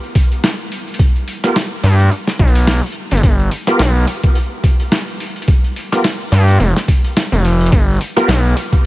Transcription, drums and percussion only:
0.04 open hi-hat soft
0.15 kick loud
0.15 open hi-hat medium
0.32 open hi-hat soft
0.44 snare loud
0.44 open hi-hat soft
0.60 open hi-hat soft
0.72 open hi-hat medium
0.88 open hi-hat soft
0.94 closed hi-hat medium
0.99 kick loud
0.99 open hi-hat soft
1.16 open hi-hat soft
1.28 open hi-hat medium
1.44 snare medium
1.44 open hi-hat soft
1.56 snare loud
1.56 open hi-hat soft
1.84 open hi-hat medium
2.00 open hi-hat soft
2.11 open hi-hat soft
2.27 snare soft
2.27 open hi-hat soft
2.35 kick loud
2.35 open hi-hat soft
2.48 open hi-hat soft
2.55 open hi-hat medium
2.67 snare loud
2.72 open hi-hat soft
2.75 open hi-hat soft
2.79 open hi-hat soft
2.83 open hi-hat soft
2.86 open hi-hat soft
2.89 open hi-hat soft
2.92 open hi-hat soft
3.11 open hi-hat medium
3.17 closed hi-hat medium
3.23 kick loud
3.23 open hi-hat soft
3.40 open hi-hat soft
3.51 open hi-hat medium
3.67 snare medium
3.67 open hi-hat soft
3.79 snare loud
3.79 open hi-hat soft
3.95 open hi-hat soft
4.07 open hi-hat medium
4.24 kick loud
4.24 open hi-hat soft
4.35 open hi-hat soft
4.64 kick loud
4.64 open hi-hat medium
4.80 open hi-hat soft
4.92 snare loud
4.92 open hi-hat soft
5.08 open hi-hat soft
5.20 open hi-hat medium
5.36 open hi-hat soft
5.42 closed hi-hat medium
5.48 kick loud
5.48 open hi-hat soft
5.64 open hi-hat soft
5.76 open hi-hat medium
5.92 snare medium
5.92 open hi-hat soft
6.04 snare loud
6.04 open hi-hat soft
6.20 open hi-hat soft
6.32 open hi-hat medium
6.48 open hi-hat soft
6.60 open hi-hat soft
6.76 snare soft
6.76 open hi-hat soft
6.88 kick loud
6.88 open hi-hat medium
7.04 open hi-hat soft
7.17 snare loud
7.17 open hi-hat soft
7.33 open hi-hat soft
7.45 open hi-hat medium
7.61 open hi-hat soft
7.66 closed hi-hat medium
7.72 kick loud
7.72 open hi-hat soft
7.88 open hi-hat soft
7.90 open hi-hat soft
7.94 open hi-hat soft
7.97 open hi-hat soft
7.99 open hi-hat soft
8.01 open hi-hat medium
8.17 snare medium
8.17 open hi-hat soft
8.29 snare loud
8.29 open hi-hat soft
8.45 open hi-hat soft
8.57 open hi-hat medium
8.72 kick loud
8.72 open hi-hat soft

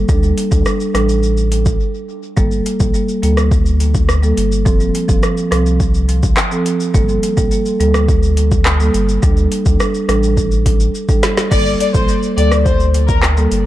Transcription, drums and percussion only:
0.09 kick loud
0.09 shaker medium
0.23 shaker soft
0.38 closed hi-hat medium
0.38 shaker medium
0.52 kick medium
0.52 shaker medium
0.66 cross-stick medium
0.66 shaker medium
0.80 shaker medium
0.95 cross-stick medium
0.95 closed hi-hat medium
0.95 shaker soft
1.09 shaker medium
1.23 shaker medium
1.37 shaker medium
1.52 closed hi-hat medium
1.52 shaker medium
1.66 kick loud
1.66 shaker medium
2.37 kick loud
2.37 shaker medium
2.51 shaker soft
2.66 closed hi-hat medium
2.66 shaker medium
2.80 kick medium
2.80 shaker medium
2.94 shaker medium
3.09 shaker medium
3.23 closed hi-hat medium
3.23 shaker soft
3.37 cross-stick medium
3.37 shaker medium
3.51 kick medium
3.51 shaker medium
3.66 shaker medium
3.80 closed hi-hat medium
3.80 shaker medium
3.94 kick medium
3.94 shaker medium
4.09 cross-stick medium
4.09 shaker medium
4.23 shaker medium
4.37 closed hi-hat medium
4.37 shaker medium
4.52 shaker medium
4.66 kick loud
4.66 shaker medium
4.80 shaker medium
4.95 closed hi-hat medium
4.95 shaker medium
5.09 kick loud
5.09 shaker medium
5.23 cross-stick medium
5.23 shaker medium
5.37 shaker medium
5.52 cross-stick medium
5.52 closed hi-hat medium
5.52 shaker soft
5.66 shaker medium
5.80 kick medium
5.80 shaker medium
5.94 shaker medium
6.09 closed hi-hat medium
6.09 shaker medium
6.23 kick loud
6.23 shaker medium
6.37 cross-stick medium
6.37 clap medium
6.37 shaker medium
6.52 shaker medium
6.66 closed hi-hat medium
6.66 shaker medium
6.80 shaker medium
6.94 kick loud
6.94 shaker medium
7.09 shaker soft
7.23 closed hi-hat medium
7.23 shaker medium
7.37 kick medium
7.37 shaker medium
7.51 shaker medium
7.66 shaker medium
7.80 closed hi-hat medium
7.80 shaker soft
7.94 cross-stick loud
7.94 shaker medium
8.08 kick loud
8.08 shaker medium
8.23 shaker medium
8.37 closed hi-hat medium
8.37 shaker medium
8.51 kick loud
8.51 shaker medium
8.65 cross-stick medium
8.65 clap medium
8.65 shaker medium
8.80 shaker medium
8.94 closed hi-hat medium
8.94 shaker medium
9.09 shaker medium
9.23 kick loud
9.23 shaker medium
9.37 shaker soft
9.52 closed hi-hat medium
9.52 shaker medium
9.66 kick medium
9.66 shaker medium
9.80 cross-stick loud
9.80 shaker medium
9.94 shaker medium
10.09 cross-stick medium
10.09 closed hi-hat medium
10.09 shaker soft
10.23 shaker medium
10.37 kick medium
10.37 shaker medium
10.52 shaker medium
10.66 kick medium
10.66 closed hi-hat medium
10.66 shaker medium
10.80 shaker medium
10.95 shaker medium
11.09 kick medium
11.09 shaker medium
11.23 snare loud
11.23 closed hi-hat medium
11.23 shaker medium
11.37 snare medium
11.37 shaker medium
11.52 kick loud
11.52 crash loud
11.52 shaker medium
11.66 shaker medium
11.80 closed hi-hat medium
11.80 shaker medium
11.94 kick medium
11.94 shaker medium
12.09 shaker medium
12.23 shaker medium
12.38 closed hi-hat medium
12.38 shaker soft
12.52 cross-stick loud
12.52 shaker medium
12.66 kick medium
12.66 shaker medium
12.80 shaker medium
12.94 closed hi-hat medium
12.94 shaker medium
13.08 kick loud
13.08 shaker medium
13.23 cross-stick medium
13.23 clap medium
13.23 shaker medium
13.37 shaker medium
13.52 closed hi-hat medium
13.52 shaker medium

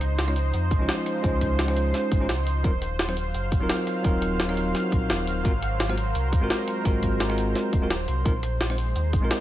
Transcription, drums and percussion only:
0.01 cross-stick soft
0.01 closed hi-hat medium
0.19 snare loud
0.19 closed hi-hat medium
0.28 cross-stick soft
0.36 closed hi-hat medium
0.54 closed hi-hat medium
0.71 kick loud
0.71 closed hi-hat medium
0.89 snare loud
0.89 closed hi-hat medium
1.06 cross-stick soft
1.06 closed hi-hat medium
1.24 kick loud
1.24 closed hi-hat medium
1.41 kick medium
1.41 cross-stick soft
1.41 closed hi-hat medium
1.59 snare loud
1.59 closed hi-hat medium
1.68 cross-stick soft
1.76 closed hi-hat medium
1.94 snare soft
1.94 closed hi-hat medium
2.12 kick loud
2.12 closed hi-hat medium
2.29 snare loud
2.29 closed hi-hat medium
2.47 closed hi-hat medium
2.64 kick loud
2.64 closed hi-hat medium
2.82 cross-stick soft
2.82 closed hi-hat medium
2.99 snare loud
2.99 closed hi-hat medium
3.09 cross-stick soft
3.17 closed hi-hat medium
3.34 closed hi-hat medium
3.52 kick loud
3.52 closed hi-hat medium
3.69 snare loud
3.69 closed hi-hat medium
3.87 cross-stick soft
3.87 closed hi-hat medium
4.04 kick loud
4.04 closed hi-hat medium
4.22 cross-stick soft
4.22 closed hi-hat medium
4.40 snare loud
4.40 closed hi-hat medium
4.49 cross-stick soft
4.57 closed hi-hat medium
4.75 snare soft
4.75 closed hi-hat medium
4.92 kick loud
4.92 closed hi-hat medium
5.10 snare loud
5.10 closed hi-hat medium
5.27 closed hi-hat medium
5.45 kick loud
5.45 closed hi-hat medium
5.63 cross-stick soft
5.63 closed hi-hat medium
5.80 snare loud
5.80 closed hi-hat medium
5.89 cross-stick soft
5.98 closed hi-hat medium
6.15 closed hi-hat medium
6.33 kick loud
6.33 closed hi-hat medium
6.50 snare loud
6.50 closed hi-hat medium
6.68 cross-stick soft
6.68 closed hi-hat medium
6.85 kick loud
6.85 closed hi-hat loud
7.03 kick medium
7.03 cross-stick soft
7.03 closed hi-hat medium
7.20 snare loud
7.20 closed hi-hat medium
7.30 cross-stick soft
7.38 closed hi-hat medium
7.55 snare soft
7.55 closed hi-hat medium
7.73 kick loud
7.73 closed hi-hat medium
7.90 snare loud
7.90 closed hi-hat loud
8.08 closed hi-hat medium
8.25 kick loud
8.25 closed hi-hat medium
8.43 cross-stick soft
8.43 closed hi-hat medium
8.61 snare loud
8.61 closed hi-hat medium
8.70 cross-stick soft
8.78 closed hi-hat medium
8.96 closed hi-hat medium
9.13 kick loud
9.13 closed hi-hat medium
9.31 snare loud
9.31 closed hi-hat medium

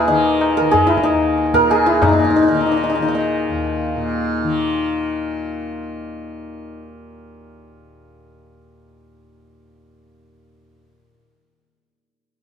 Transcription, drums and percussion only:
0.09 tabla tin medium
0.41 tabla na loud
0.74 tabla tin loud
0.74 tabla ge medium
0.90 tabla na medium
0.97 tabla ke medium
1.06 tabla na medium
1.38 tabla te medium
1.46 tabla te medium
1.54 tabla ke medium
1.62 tabla te medium
1.70 tabla na medium
2.02 tabla na loud
2.02 tabla ge loud

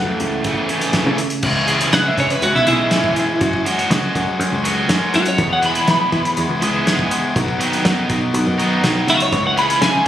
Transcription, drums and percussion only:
0.20 closed hi-hat medium
0.44 kick loud
0.44 closed hi-hat medium
0.69 closed hi-hat medium
0.81 closed hi-hat medium
0.93 kick loud
0.93 snare loud
0.93 closed hi-hat medium
1.18 closed hi-hat medium
1.30 closed hi-hat medium
1.43 kick loud
1.43 crash medium
1.68 closed hi-hat medium
1.81 closed hi-hat medium
1.93 snare loud
1.93 closed hi-hat medium
2.18 kick medium
2.18 closed hi-hat medium
2.30 closed hi-hat medium
2.42 closed hi-hat medium
2.55 snare soft
2.67 closed hi-hat medium
2.91 snare loud
2.91 closed hi-hat medium
3.04 kick medium
3.16 closed hi-hat medium
3.41 kick loud
3.41 closed hi-hat medium
3.53 kick medium
3.66 closed hi-hat medium
3.79 closed hi-hat medium
3.91 snare loud
3.91 closed hi-hat medium
4.15 kick medium
4.15 closed hi-hat medium
4.41 closed hi-hat medium
4.65 closed hi-hat medium
4.89 snare loud
4.89 closed hi-hat medium
5.14 closed hi-hat medium
5.26 closed hi-hat medium
5.38 kick loud
5.38 closed hi-hat medium
5.63 closed hi-hat medium
5.75 closed hi-hat medium
5.88 snare loud
5.88 closed hi-hat medium
6.12 kick medium
6.12 closed hi-hat medium
6.25 closed hi-hat medium
6.37 closed hi-hat medium
6.62 closed hi-hat medium
6.87 snare loud
6.87 closed hi-hat medium
6.99 kick medium
7.11 closed hi-hat medium
7.36 kick loud
7.36 closed hi-hat medium
7.48 kick medium
7.61 closed hi-hat medium
7.73 closed hi-hat medium
7.85 snare loud
7.85 closed hi-hat medium
8.10 kick medium
8.10 closed hi-hat medium
8.34 closed hi-hat medium
8.60 closed hi-hat medium
8.84 snare loud
8.84 closed hi-hat medium
9.08 closed hi-hat medium
9.20 closed hi-hat medium
9.33 kick loud
9.33 closed hi-hat medium
9.57 closed hi-hat medium
9.70 closed hi-hat medium
9.82 snare loud
9.82 closed hi-hat medium

